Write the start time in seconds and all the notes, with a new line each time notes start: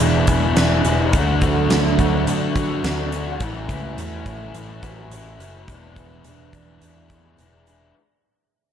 Already playing: E3 B3 D4 G#4 B4
0.00 E1 E2 B2 E3 G#3 B3 D4 E4
0.27 E1 G#3 D4 E4 G#4, kick, closed hi-hat
0.32 E3
0.57 E1 E3 G#3 D4 E4, snare, closed hi-hat
0.85 E1 E3 G#3 D4 E4 G#4, closed hi-hat
1.13 D2 D3 A3 D4 F#4, kick, closed hi-hat
1.41 A3 D4 F#4, kick, closed hi-hat
1.70 D2 D3 A3 D4 F#4, snare, closed hi-hat
1.99 D2 A3 D4 F#4, kick, closed hi-hat
2.27 D3 A3 D4 F#4, closed hi-hat
2.55 A3 D4 F#4, kick, closed hi-hat
2.83 D2 D3 A3 D4 F#4, snare, closed hi-hat
3.11 A3 D4 F#4, closed hi-hat
3.39 A1 A2 E3 A3 C#4 E4 C#5, kick, closed hi-hat
3.68 C#2 E3 A3 C#4 E4, kick, closed hi-hat
3.97 E2 E3 A3 C#4 E4, closed hi-hat
4.26 A1 A3 C#4 E4, kick, closed hi-hat
4.54 A1 A2 E3 A3 C#4 E4, closed hi-hat
4.82 A1 A3 C#4 E4 F#4, kick, closed hi-hat
5.10 A1 E3 A3 C#4, closed hi-hat
5.15 E4
5.40 F#1 A3 C#4 E4 F#4, closed hi-hat
5.68 E1 E2 B2 E3 G#3 B3 D4 E4 G#4, kick, closed hi-hat
5.96 E3 G#3 B3 D4 E4, kick, closed hi-hat
6.24 E1 E3 G#3 B3 D4, closed hi-hat
6.29 E4
6.53 E1 E3 G#3 D4 E4, kick, closed hi-hat
6.81 E2 B2 E3 G#3 B3 D4 E4, closed hi-hat
7.10 G#3 D4 E4 G#4, kick, closed hi-hat
7.14 E3
7.38 E1 E3 G#3 D4 E4, closed hi-hat
7.67 E3 G#3 D4 E4 G#4, closed hi-hat